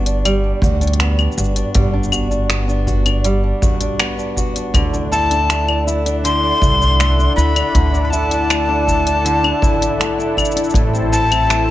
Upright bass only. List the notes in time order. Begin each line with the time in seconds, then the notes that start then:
Already playing: G1
0.62 D2
1.37 G1
1.75 G1
4.74 D2
6.62 C2
7.37 D2
7.75 D2
10.74 A1